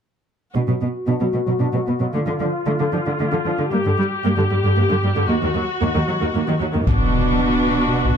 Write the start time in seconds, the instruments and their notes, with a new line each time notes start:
0.55 cello section B2, viola section D4 F#4
0.68 cello section B2, viola section F#3
0.82 cello section B2, viola section B3
1.08 cello section B2, viola section D4
1.21 cello section B2, viola section F#3
1.33 cello section B2, viola section B3
1.47 cello section B2, viola section F#3
1.60 cello section B2, viola section D4
1.73 cello section B2, viola section F#3
1.87 cello section B2, viola section B3
2.00 cello section B2, viola section F#3
2.13 cello section D3, viola section A3 F4
2.26 cello section D3, viola section D3
2.40 cello section D3, viola section F3
2.66 cello section D3, viola section A3
2.79 cello section D3, viola section D3
2.93 cello section D3, viola section F3
3.06 cello section D3, viola section D3
3.20 cello section D3, viola section A3
3.32 cello section D3, viola section D3
3.45 cello section D3, viola section F3
3.58 cello section D3, viola section D3
3.72 cello section G2, viola section A#3 G4
3.85 cello section G2, viola section D3
3.98 cello section G2, viola section G3
4.24 cello section G2, viola section A#3
4.37 cello section G2, viola section D3
4.50 cello section G2, viola section G3
4.64 cello section G2, viola section D3
4.77 cello section G2, viola section A#3
4.90 cello section G2, viola section D3
5.03 cello section G2, viola section G3
5.16 cello section G2, viola section D3
5.29 cello section D#2, viola section A#3 F#4
5.43 cello section D#2, viola section D#3
5.55 cello section D#2, viola section F#3
5.81 cello section D#2, viola section A#3
5.95 cello section D#2, viola section D#3
6.08 cello section D#2, viola section F#3
6.21 cello section D#2, viola section D#3
6.34 cello section D#2, viola section A#3
6.48 cello section D#2, viola section D#3
6.60 cello section D#2, viola section F#3
6.73 cello section D#2, viola section D#3
6.86 cello section B2, viola section D4 F#4, taiko, impact
8.05 taiko